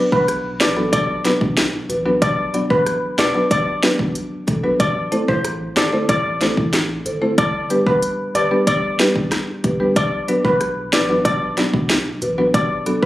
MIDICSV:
0, 0, Header, 1, 5, 480
1, 0, Start_track
1, 0, Tempo, 645161
1, 1651, Time_signature, 4, 2, 24, 8
1, 9714, End_track
2, 0, Start_track
2, 0, Title_t, "Steel pan"
2, 0, Program_c, 0, 114
2, 92, Note_on_c, 0, 71, 87
2, 186, Note_off_c, 0, 71, 0
2, 450, Note_on_c, 0, 74, 81
2, 545, Note_off_c, 0, 74, 0
2, 689, Note_on_c, 0, 74, 106
2, 1028, Note_off_c, 0, 74, 0
2, 1651, Note_on_c, 0, 74, 109
2, 1839, Note_off_c, 0, 74, 0
2, 2011, Note_on_c, 0, 71, 81
2, 2105, Note_off_c, 0, 71, 0
2, 2371, Note_on_c, 0, 74, 100
2, 2465, Note_off_c, 0, 74, 0
2, 2612, Note_on_c, 0, 74, 108
2, 2950, Note_off_c, 0, 74, 0
2, 3570, Note_on_c, 0, 74, 106
2, 3759, Note_off_c, 0, 74, 0
2, 3931, Note_on_c, 0, 72, 87
2, 4025, Note_off_c, 0, 72, 0
2, 4290, Note_on_c, 0, 74, 81
2, 4385, Note_off_c, 0, 74, 0
2, 4532, Note_on_c, 0, 74, 109
2, 4870, Note_off_c, 0, 74, 0
2, 5492, Note_on_c, 0, 74, 110
2, 5680, Note_off_c, 0, 74, 0
2, 5852, Note_on_c, 0, 71, 75
2, 5946, Note_off_c, 0, 71, 0
2, 6213, Note_on_c, 0, 74, 95
2, 6306, Note_off_c, 0, 74, 0
2, 6452, Note_on_c, 0, 74, 110
2, 6790, Note_off_c, 0, 74, 0
2, 7413, Note_on_c, 0, 74, 109
2, 7601, Note_off_c, 0, 74, 0
2, 7773, Note_on_c, 0, 71, 87
2, 7866, Note_off_c, 0, 71, 0
2, 8134, Note_on_c, 0, 74, 86
2, 8227, Note_off_c, 0, 74, 0
2, 8370, Note_on_c, 0, 74, 113
2, 8709, Note_off_c, 0, 74, 0
2, 9331, Note_on_c, 0, 74, 109
2, 9520, Note_off_c, 0, 74, 0
2, 9691, Note_on_c, 0, 71, 81
2, 9714, Note_off_c, 0, 71, 0
2, 9714, End_track
3, 0, Start_track
3, 0, Title_t, "Marimba"
3, 0, Program_c, 1, 12
3, 449, Note_on_c, 1, 66, 76
3, 449, Note_on_c, 1, 71, 84
3, 498, Note_off_c, 1, 66, 0
3, 498, Note_off_c, 1, 71, 0
3, 569, Note_on_c, 1, 54, 69
3, 569, Note_on_c, 1, 59, 64
3, 570, Note_on_c, 1, 62, 64
3, 570, Note_on_c, 1, 66, 65
3, 571, Note_on_c, 1, 69, 76
3, 666, Note_off_c, 1, 54, 0
3, 666, Note_off_c, 1, 59, 0
3, 666, Note_off_c, 1, 62, 0
3, 666, Note_off_c, 1, 66, 0
3, 667, Note_off_c, 1, 69, 0
3, 930, Note_on_c, 1, 54, 80
3, 930, Note_on_c, 1, 59, 73
3, 930, Note_on_c, 1, 62, 70
3, 930, Note_on_c, 1, 66, 72
3, 930, Note_on_c, 1, 71, 85
3, 1026, Note_off_c, 1, 59, 0
3, 1026, Note_off_c, 1, 62, 0
3, 1026, Note_off_c, 1, 71, 0
3, 1027, Note_off_c, 1, 54, 0
3, 1027, Note_off_c, 1, 66, 0
3, 1409, Note_on_c, 1, 66, 96
3, 1410, Note_on_c, 1, 71, 104
3, 1458, Note_off_c, 1, 66, 0
3, 1458, Note_off_c, 1, 71, 0
3, 1529, Note_on_c, 1, 59, 63
3, 1530, Note_on_c, 1, 54, 73
3, 1530, Note_on_c, 1, 62, 63
3, 1530, Note_on_c, 1, 66, 67
3, 1530, Note_on_c, 1, 71, 79
3, 1626, Note_off_c, 1, 54, 0
3, 1626, Note_off_c, 1, 59, 0
3, 1626, Note_off_c, 1, 62, 0
3, 1626, Note_off_c, 1, 66, 0
3, 1627, Note_off_c, 1, 71, 0
3, 1891, Note_on_c, 1, 54, 76
3, 1891, Note_on_c, 1, 59, 71
3, 1891, Note_on_c, 1, 62, 69
3, 1891, Note_on_c, 1, 66, 67
3, 1891, Note_on_c, 1, 74, 82
3, 1987, Note_off_c, 1, 54, 0
3, 1987, Note_off_c, 1, 59, 0
3, 1987, Note_off_c, 1, 62, 0
3, 1987, Note_off_c, 1, 66, 0
3, 1987, Note_off_c, 1, 74, 0
3, 2369, Note_on_c, 1, 66, 76
3, 2370, Note_on_c, 1, 71, 83
3, 2418, Note_off_c, 1, 66, 0
3, 2418, Note_off_c, 1, 71, 0
3, 2490, Note_on_c, 1, 59, 64
3, 2490, Note_on_c, 1, 62, 65
3, 2490, Note_on_c, 1, 66, 62
3, 2491, Note_on_c, 1, 54, 71
3, 2491, Note_on_c, 1, 71, 75
3, 2586, Note_off_c, 1, 59, 0
3, 2586, Note_off_c, 1, 66, 0
3, 2587, Note_off_c, 1, 54, 0
3, 2587, Note_off_c, 1, 62, 0
3, 2587, Note_off_c, 1, 71, 0
3, 2848, Note_on_c, 1, 54, 83
3, 2848, Note_on_c, 1, 59, 74
3, 2848, Note_on_c, 1, 62, 74
3, 2848, Note_on_c, 1, 66, 72
3, 2849, Note_on_c, 1, 71, 85
3, 2945, Note_off_c, 1, 54, 0
3, 2945, Note_off_c, 1, 59, 0
3, 2945, Note_off_c, 1, 62, 0
3, 2945, Note_off_c, 1, 66, 0
3, 2946, Note_off_c, 1, 71, 0
3, 3327, Note_on_c, 1, 66, 99
3, 3328, Note_on_c, 1, 69, 106
3, 3377, Note_off_c, 1, 66, 0
3, 3377, Note_off_c, 1, 69, 0
3, 3448, Note_on_c, 1, 54, 70
3, 3449, Note_on_c, 1, 59, 66
3, 3449, Note_on_c, 1, 62, 65
3, 3449, Note_on_c, 1, 66, 67
3, 3450, Note_on_c, 1, 71, 83
3, 3546, Note_off_c, 1, 54, 0
3, 3546, Note_off_c, 1, 59, 0
3, 3546, Note_off_c, 1, 62, 0
3, 3546, Note_off_c, 1, 66, 0
3, 3546, Note_off_c, 1, 71, 0
3, 3808, Note_on_c, 1, 57, 80
3, 3808, Note_on_c, 1, 60, 71
3, 3809, Note_on_c, 1, 64, 74
3, 3809, Note_on_c, 1, 69, 71
3, 3810, Note_on_c, 1, 72, 84
3, 3905, Note_off_c, 1, 60, 0
3, 3906, Note_off_c, 1, 57, 0
3, 3906, Note_off_c, 1, 64, 0
3, 3906, Note_off_c, 1, 69, 0
3, 3906, Note_off_c, 1, 72, 0
3, 4289, Note_on_c, 1, 69, 77
3, 4289, Note_on_c, 1, 72, 85
3, 4338, Note_off_c, 1, 69, 0
3, 4338, Note_off_c, 1, 72, 0
3, 4409, Note_on_c, 1, 64, 64
3, 4409, Note_on_c, 1, 69, 65
3, 4410, Note_on_c, 1, 57, 71
3, 4410, Note_on_c, 1, 60, 64
3, 4410, Note_on_c, 1, 72, 78
3, 4506, Note_off_c, 1, 57, 0
3, 4506, Note_off_c, 1, 60, 0
3, 4506, Note_off_c, 1, 64, 0
3, 4506, Note_off_c, 1, 69, 0
3, 4506, Note_off_c, 1, 72, 0
3, 4770, Note_on_c, 1, 57, 78
3, 4770, Note_on_c, 1, 64, 72
3, 4770, Note_on_c, 1, 69, 70
3, 4771, Note_on_c, 1, 60, 76
3, 4771, Note_on_c, 1, 72, 87
3, 4866, Note_off_c, 1, 57, 0
3, 4867, Note_off_c, 1, 60, 0
3, 4867, Note_off_c, 1, 64, 0
3, 4867, Note_off_c, 1, 69, 0
3, 4867, Note_off_c, 1, 72, 0
3, 5249, Note_on_c, 1, 69, 96
3, 5250, Note_on_c, 1, 72, 99
3, 5298, Note_off_c, 1, 69, 0
3, 5298, Note_off_c, 1, 72, 0
3, 5369, Note_on_c, 1, 57, 72
3, 5369, Note_on_c, 1, 60, 62
3, 5369, Note_on_c, 1, 64, 67
3, 5369, Note_on_c, 1, 72, 78
3, 5370, Note_on_c, 1, 69, 63
3, 5466, Note_off_c, 1, 57, 0
3, 5466, Note_off_c, 1, 60, 0
3, 5466, Note_off_c, 1, 64, 0
3, 5466, Note_off_c, 1, 69, 0
3, 5466, Note_off_c, 1, 72, 0
3, 5731, Note_on_c, 1, 55, 76
3, 5732, Note_on_c, 1, 59, 69
3, 5732, Note_on_c, 1, 62, 69
3, 5732, Note_on_c, 1, 67, 72
3, 5732, Note_on_c, 1, 71, 86
3, 5827, Note_off_c, 1, 55, 0
3, 5827, Note_off_c, 1, 62, 0
3, 5827, Note_off_c, 1, 67, 0
3, 5828, Note_off_c, 1, 59, 0
3, 5828, Note_off_c, 1, 71, 0
3, 6212, Note_on_c, 1, 67, 75
3, 6213, Note_on_c, 1, 71, 84
3, 6259, Note_off_c, 1, 67, 0
3, 6260, Note_off_c, 1, 71, 0
3, 6332, Note_on_c, 1, 55, 67
3, 6332, Note_on_c, 1, 59, 64
3, 6332, Note_on_c, 1, 62, 64
3, 6333, Note_on_c, 1, 67, 64
3, 6333, Note_on_c, 1, 71, 76
3, 6427, Note_off_c, 1, 55, 0
3, 6427, Note_off_c, 1, 59, 0
3, 6428, Note_off_c, 1, 62, 0
3, 6428, Note_off_c, 1, 67, 0
3, 6428, Note_off_c, 1, 71, 0
3, 6693, Note_on_c, 1, 55, 76
3, 6693, Note_on_c, 1, 62, 69
3, 6694, Note_on_c, 1, 59, 74
3, 6694, Note_on_c, 1, 67, 73
3, 6694, Note_on_c, 1, 71, 91
3, 6788, Note_off_c, 1, 55, 0
3, 6788, Note_off_c, 1, 59, 0
3, 6788, Note_off_c, 1, 62, 0
3, 6788, Note_off_c, 1, 67, 0
3, 6788, Note_off_c, 1, 71, 0
3, 7171, Note_on_c, 1, 67, 95
3, 7172, Note_on_c, 1, 71, 104
3, 7219, Note_off_c, 1, 67, 0
3, 7220, Note_off_c, 1, 71, 0
3, 7291, Note_on_c, 1, 55, 74
3, 7291, Note_on_c, 1, 59, 64
3, 7291, Note_on_c, 1, 62, 67
3, 7291, Note_on_c, 1, 67, 64
3, 7292, Note_on_c, 1, 71, 76
3, 7387, Note_off_c, 1, 55, 0
3, 7387, Note_off_c, 1, 59, 0
3, 7387, Note_off_c, 1, 62, 0
3, 7387, Note_off_c, 1, 67, 0
3, 7387, Note_off_c, 1, 71, 0
3, 7651, Note_on_c, 1, 54, 77
3, 7651, Note_on_c, 1, 59, 70
3, 7652, Note_on_c, 1, 62, 70
3, 7652, Note_on_c, 1, 66, 72
3, 7652, Note_on_c, 1, 71, 85
3, 7747, Note_off_c, 1, 54, 0
3, 7747, Note_off_c, 1, 59, 0
3, 7747, Note_off_c, 1, 62, 0
3, 7747, Note_off_c, 1, 66, 0
3, 7747, Note_off_c, 1, 71, 0
3, 8131, Note_on_c, 1, 66, 73
3, 8132, Note_on_c, 1, 71, 88
3, 8179, Note_off_c, 1, 66, 0
3, 8179, Note_off_c, 1, 71, 0
3, 8251, Note_on_c, 1, 54, 70
3, 8251, Note_on_c, 1, 59, 65
3, 8251, Note_on_c, 1, 62, 66
3, 8251, Note_on_c, 1, 71, 81
3, 8252, Note_on_c, 1, 66, 61
3, 8347, Note_off_c, 1, 54, 0
3, 8347, Note_off_c, 1, 59, 0
3, 8347, Note_off_c, 1, 62, 0
3, 8347, Note_off_c, 1, 66, 0
3, 8347, Note_off_c, 1, 71, 0
3, 8611, Note_on_c, 1, 54, 82
3, 8611, Note_on_c, 1, 66, 76
3, 8612, Note_on_c, 1, 59, 72
3, 8612, Note_on_c, 1, 62, 69
3, 8612, Note_on_c, 1, 74, 88
3, 8707, Note_off_c, 1, 54, 0
3, 8707, Note_off_c, 1, 59, 0
3, 8707, Note_off_c, 1, 62, 0
3, 8707, Note_off_c, 1, 66, 0
3, 8707, Note_off_c, 1, 74, 0
3, 9090, Note_on_c, 1, 66, 99
3, 9091, Note_on_c, 1, 71, 104
3, 9138, Note_off_c, 1, 66, 0
3, 9139, Note_off_c, 1, 71, 0
3, 9211, Note_on_c, 1, 54, 69
3, 9211, Note_on_c, 1, 59, 64
3, 9212, Note_on_c, 1, 62, 64
3, 9212, Note_on_c, 1, 71, 78
3, 9213, Note_on_c, 1, 66, 63
3, 9307, Note_off_c, 1, 54, 0
3, 9307, Note_off_c, 1, 59, 0
3, 9307, Note_off_c, 1, 71, 0
3, 9308, Note_off_c, 1, 62, 0
3, 9308, Note_off_c, 1, 66, 0
3, 9571, Note_on_c, 1, 54, 76
3, 9571, Note_on_c, 1, 59, 72
3, 9572, Note_on_c, 1, 62, 70
3, 9572, Note_on_c, 1, 66, 71
3, 9572, Note_on_c, 1, 69, 83
3, 9667, Note_off_c, 1, 54, 0
3, 9667, Note_off_c, 1, 59, 0
3, 9667, Note_off_c, 1, 62, 0
3, 9667, Note_off_c, 1, 66, 0
3, 9668, Note_off_c, 1, 69, 0
3, 9714, End_track
4, 0, Start_track
4, 0, Title_t, "Sub bass"
4, 0, Program_c, 2, 38
4, 92, Note_on_c, 2, 35, 88
4, 450, Note_on_c, 2, 33, 87
4, 462, Note_off_c, 2, 35, 0
4, 646, Note_off_c, 2, 33, 0
4, 690, Note_on_c, 2, 35, 88
4, 983, Note_off_c, 2, 35, 0
4, 1050, Note_on_c, 2, 35, 89
4, 1343, Note_off_c, 2, 35, 0
4, 1409, Note_on_c, 2, 33, 93
4, 1605, Note_off_c, 2, 33, 0
4, 1651, Note_on_c, 2, 35, 116
4, 1943, Note_off_c, 2, 35, 0
4, 2011, Note_on_c, 2, 33, 90
4, 2206, Note_off_c, 2, 33, 0
4, 2369, Note_on_c, 2, 35, 92
4, 2467, Note_off_c, 2, 35, 0
4, 3333, Note_on_c, 2, 35, 96
4, 3527, Note_off_c, 2, 35, 0
4, 3570, Note_on_c, 2, 33, 119
4, 3765, Note_off_c, 2, 33, 0
4, 3931, Note_on_c, 2, 33, 95
4, 4223, Note_off_c, 2, 33, 0
4, 4290, Note_on_c, 2, 31, 96
4, 4485, Note_off_c, 2, 31, 0
4, 4530, Note_on_c, 2, 33, 100
4, 4823, Note_off_c, 2, 33, 0
4, 4891, Note_on_c, 2, 33, 92
4, 5184, Note_off_c, 2, 33, 0
4, 5250, Note_on_c, 2, 31, 100
4, 5446, Note_off_c, 2, 31, 0
4, 5490, Note_on_c, 2, 31, 115
4, 5783, Note_off_c, 2, 31, 0
4, 5852, Note_on_c, 2, 30, 88
4, 6046, Note_off_c, 2, 30, 0
4, 6211, Note_on_c, 2, 31, 95
4, 6308, Note_off_c, 2, 31, 0
4, 7173, Note_on_c, 2, 31, 92
4, 7367, Note_off_c, 2, 31, 0
4, 7412, Note_on_c, 2, 35, 109
4, 7607, Note_off_c, 2, 35, 0
4, 7772, Note_on_c, 2, 35, 91
4, 8131, Note_on_c, 2, 33, 84
4, 8142, Note_off_c, 2, 35, 0
4, 8326, Note_off_c, 2, 33, 0
4, 8370, Note_on_c, 2, 35, 91
4, 8663, Note_off_c, 2, 35, 0
4, 8731, Note_on_c, 2, 35, 91
4, 9024, Note_off_c, 2, 35, 0
4, 9092, Note_on_c, 2, 33, 93
4, 9287, Note_off_c, 2, 33, 0
4, 9330, Note_on_c, 2, 35, 120
4, 9623, Note_off_c, 2, 35, 0
4, 9691, Note_on_c, 2, 33, 94
4, 9714, Note_off_c, 2, 33, 0
4, 9714, End_track
5, 0, Start_track
5, 0, Title_t, "Drums"
5, 92, Note_on_c, 9, 36, 91
5, 166, Note_off_c, 9, 36, 0
5, 211, Note_on_c, 9, 37, 64
5, 211, Note_on_c, 9, 42, 70
5, 285, Note_off_c, 9, 37, 0
5, 285, Note_off_c, 9, 42, 0
5, 450, Note_on_c, 9, 38, 127
5, 452, Note_on_c, 9, 42, 55
5, 524, Note_off_c, 9, 38, 0
5, 526, Note_off_c, 9, 42, 0
5, 690, Note_on_c, 9, 36, 103
5, 691, Note_on_c, 9, 42, 82
5, 764, Note_off_c, 9, 36, 0
5, 765, Note_off_c, 9, 42, 0
5, 930, Note_on_c, 9, 42, 57
5, 931, Note_on_c, 9, 38, 72
5, 1004, Note_off_c, 9, 42, 0
5, 1006, Note_off_c, 9, 38, 0
5, 1051, Note_on_c, 9, 36, 104
5, 1125, Note_off_c, 9, 36, 0
5, 1170, Note_on_c, 9, 38, 115
5, 1170, Note_on_c, 9, 42, 65
5, 1244, Note_off_c, 9, 42, 0
5, 1245, Note_off_c, 9, 38, 0
5, 1411, Note_on_c, 9, 42, 44
5, 1485, Note_off_c, 9, 42, 0
5, 1650, Note_on_c, 9, 36, 124
5, 1651, Note_on_c, 9, 42, 70
5, 1725, Note_off_c, 9, 36, 0
5, 1725, Note_off_c, 9, 42, 0
5, 1889, Note_on_c, 9, 42, 48
5, 1964, Note_off_c, 9, 42, 0
5, 2011, Note_on_c, 9, 36, 96
5, 2086, Note_off_c, 9, 36, 0
5, 2131, Note_on_c, 9, 37, 69
5, 2131, Note_on_c, 9, 42, 71
5, 2206, Note_off_c, 9, 37, 0
5, 2206, Note_off_c, 9, 42, 0
5, 2370, Note_on_c, 9, 38, 118
5, 2372, Note_on_c, 9, 42, 57
5, 2444, Note_off_c, 9, 38, 0
5, 2446, Note_off_c, 9, 42, 0
5, 2610, Note_on_c, 9, 36, 106
5, 2611, Note_on_c, 9, 42, 80
5, 2685, Note_off_c, 9, 36, 0
5, 2685, Note_off_c, 9, 42, 0
5, 2849, Note_on_c, 9, 42, 56
5, 2851, Note_on_c, 9, 38, 122
5, 2923, Note_off_c, 9, 42, 0
5, 2925, Note_off_c, 9, 38, 0
5, 2970, Note_on_c, 9, 36, 100
5, 3045, Note_off_c, 9, 36, 0
5, 3090, Note_on_c, 9, 42, 67
5, 3164, Note_off_c, 9, 42, 0
5, 3330, Note_on_c, 9, 42, 46
5, 3332, Note_on_c, 9, 36, 97
5, 3405, Note_off_c, 9, 42, 0
5, 3407, Note_off_c, 9, 36, 0
5, 3570, Note_on_c, 9, 36, 126
5, 3570, Note_on_c, 9, 42, 70
5, 3645, Note_off_c, 9, 36, 0
5, 3645, Note_off_c, 9, 42, 0
5, 3809, Note_on_c, 9, 42, 48
5, 3883, Note_off_c, 9, 42, 0
5, 3931, Note_on_c, 9, 36, 92
5, 4006, Note_off_c, 9, 36, 0
5, 4051, Note_on_c, 9, 37, 70
5, 4051, Note_on_c, 9, 42, 75
5, 4125, Note_off_c, 9, 37, 0
5, 4125, Note_off_c, 9, 42, 0
5, 4290, Note_on_c, 9, 38, 121
5, 4292, Note_on_c, 9, 42, 55
5, 4364, Note_off_c, 9, 38, 0
5, 4366, Note_off_c, 9, 42, 0
5, 4530, Note_on_c, 9, 36, 101
5, 4530, Note_on_c, 9, 42, 82
5, 4605, Note_off_c, 9, 36, 0
5, 4605, Note_off_c, 9, 42, 0
5, 4770, Note_on_c, 9, 42, 58
5, 4772, Note_on_c, 9, 38, 71
5, 4844, Note_off_c, 9, 42, 0
5, 4846, Note_off_c, 9, 38, 0
5, 4891, Note_on_c, 9, 36, 97
5, 4965, Note_off_c, 9, 36, 0
5, 5009, Note_on_c, 9, 42, 66
5, 5010, Note_on_c, 9, 38, 115
5, 5084, Note_off_c, 9, 38, 0
5, 5084, Note_off_c, 9, 42, 0
5, 5251, Note_on_c, 9, 42, 48
5, 5326, Note_off_c, 9, 42, 0
5, 5490, Note_on_c, 9, 42, 70
5, 5491, Note_on_c, 9, 36, 124
5, 5565, Note_off_c, 9, 36, 0
5, 5565, Note_off_c, 9, 42, 0
5, 5730, Note_on_c, 9, 42, 49
5, 5804, Note_off_c, 9, 42, 0
5, 5852, Note_on_c, 9, 36, 93
5, 5926, Note_off_c, 9, 36, 0
5, 5971, Note_on_c, 9, 42, 72
5, 6045, Note_off_c, 9, 42, 0
5, 6213, Note_on_c, 9, 42, 56
5, 6287, Note_off_c, 9, 42, 0
5, 6451, Note_on_c, 9, 36, 97
5, 6451, Note_on_c, 9, 42, 78
5, 6525, Note_off_c, 9, 36, 0
5, 6526, Note_off_c, 9, 42, 0
5, 6690, Note_on_c, 9, 42, 60
5, 6693, Note_on_c, 9, 38, 120
5, 6765, Note_off_c, 9, 42, 0
5, 6767, Note_off_c, 9, 38, 0
5, 6812, Note_on_c, 9, 36, 99
5, 6886, Note_off_c, 9, 36, 0
5, 6931, Note_on_c, 9, 42, 66
5, 6932, Note_on_c, 9, 37, 97
5, 6932, Note_on_c, 9, 38, 67
5, 7006, Note_off_c, 9, 37, 0
5, 7006, Note_off_c, 9, 38, 0
5, 7006, Note_off_c, 9, 42, 0
5, 7172, Note_on_c, 9, 42, 47
5, 7174, Note_on_c, 9, 36, 91
5, 7246, Note_off_c, 9, 42, 0
5, 7248, Note_off_c, 9, 36, 0
5, 7412, Note_on_c, 9, 36, 123
5, 7412, Note_on_c, 9, 42, 70
5, 7486, Note_off_c, 9, 36, 0
5, 7486, Note_off_c, 9, 42, 0
5, 7651, Note_on_c, 9, 42, 50
5, 7725, Note_off_c, 9, 42, 0
5, 7772, Note_on_c, 9, 36, 94
5, 7847, Note_off_c, 9, 36, 0
5, 7891, Note_on_c, 9, 37, 68
5, 7891, Note_on_c, 9, 42, 72
5, 7965, Note_off_c, 9, 37, 0
5, 7965, Note_off_c, 9, 42, 0
5, 8131, Note_on_c, 9, 38, 127
5, 8132, Note_on_c, 9, 42, 59
5, 8205, Note_off_c, 9, 38, 0
5, 8207, Note_off_c, 9, 42, 0
5, 8371, Note_on_c, 9, 36, 100
5, 8372, Note_on_c, 9, 42, 82
5, 8445, Note_off_c, 9, 36, 0
5, 8446, Note_off_c, 9, 42, 0
5, 8611, Note_on_c, 9, 42, 60
5, 8613, Note_on_c, 9, 38, 72
5, 8685, Note_off_c, 9, 42, 0
5, 8687, Note_off_c, 9, 38, 0
5, 8731, Note_on_c, 9, 36, 101
5, 8806, Note_off_c, 9, 36, 0
5, 8850, Note_on_c, 9, 42, 68
5, 8851, Note_on_c, 9, 38, 113
5, 8925, Note_off_c, 9, 38, 0
5, 8925, Note_off_c, 9, 42, 0
5, 9091, Note_on_c, 9, 42, 48
5, 9165, Note_off_c, 9, 42, 0
5, 9331, Note_on_c, 9, 36, 127
5, 9331, Note_on_c, 9, 42, 69
5, 9405, Note_off_c, 9, 36, 0
5, 9405, Note_off_c, 9, 42, 0
5, 9569, Note_on_c, 9, 42, 48
5, 9644, Note_off_c, 9, 42, 0
5, 9691, Note_on_c, 9, 36, 96
5, 9714, Note_off_c, 9, 36, 0
5, 9714, End_track
0, 0, End_of_file